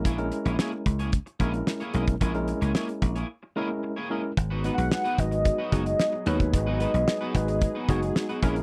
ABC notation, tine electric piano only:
X:1
M:4/4
L:1/16
Q:1/4=111
K:G#m
V:1 name="Tine electric piano"
z [G,CEA]6 z3 [G,CEA]3 z [G,CEA]2 | [G,CEA] [G,CEA]6 z3 [G,CEA]3 z [G,CEA]2 | z2 [G,DFB]3 z [G,DFB]3 z [G,DFG]3 z [G,DFB]2- | [G,DFB] z [G,DFB]3 z [G,DFB]3 z [G,DFG]3 z [G,CEA]2 |]